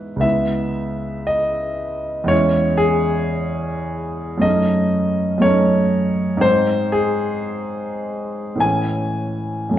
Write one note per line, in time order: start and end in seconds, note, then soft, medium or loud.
0.00 0.17 G#2 soft
0.00 0.17 G#3 soft
0.00 0.18 B3 soft
0.00 0.19 E4 soft
0.00 0.23 B4 medium
0.16 2.23 C#2 soft
0.16 2.24 G#3 soft
0.16 2.25 B3 soft
0.21 2.26 E4 soft
0.21 1.28 E5 medium
1.27 2.30 D#5 medium
2.24 4.37 E2 medium
2.24 4.38 G#3 soft
2.24 4.39 C#4 soft
2.24 2.81 C#5 medium
2.30 4.40 E4 soft
2.77 4.43 G#4 medium
4.38 5.36 F#2 medium
4.38 5.38 A3 soft
4.38 5.40 C#4 soft
4.38 5.43 D#5 medium
4.43 5.41 D#4 soft
5.38 6.38 F#2 medium
5.38 6.39 A3 soft
5.38 6.40 C#4 soft
5.38 6.43 C#5 medium
5.44 6.41 D#4 soft
6.37 8.56 G#2 medium
6.37 8.56 G#3 soft
6.37 8.57 C4 soft
6.41 8.58 D#4 soft
6.41 6.94 C5 medium
6.92 8.62 G#4 medium
8.55 9.68 A2 soft
8.55 9.70 E3 soft
8.60 9.71 C#4 soft
8.60 9.74 G#5 medium
9.69 9.79 F#2 soft
9.69 9.79 A3 soft
9.74 9.79 C#4 soft